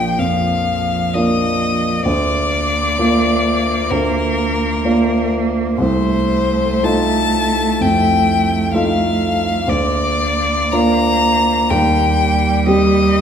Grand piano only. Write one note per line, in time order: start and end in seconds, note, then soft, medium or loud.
0.00 2.09 A#1 soft
0.00 0.16 A#3 soft
0.00 0.16 D4 soft
0.00 0.16 F4 soft
0.19 1.12 F2 soft
1.15 2.02 A#3 soft
1.15 2.02 D4 soft
1.15 2.02 F4 soft
2.05 2.96 D2 soft
2.98 3.87 A#3 soft
2.98 3.87 D4 soft
2.98 3.87 F4 soft
3.91 4.82 D2 soft
4.85 5.74 A#3 soft
4.85 5.75 D4 soft
4.85 5.75 F4 soft
5.78 6.80 C2 soft
6.83 7.76 A3 soft
6.83 7.77 D#4 soft
6.83 7.77 F4 soft
7.81 8.71 F2 soft
8.74 9.64 A3 soft
8.74 9.64 D#4 soft
8.74 9.65 F4 soft
9.68 10.70 D2 soft
10.73 11.67 A#3 soft
10.73 11.67 D4 soft
10.73 11.67 F4 soft
11.71 12.64 D#2 soft
12.67 13.21 G3 soft
12.67 13.21 C4 soft
12.67 13.21 G4 soft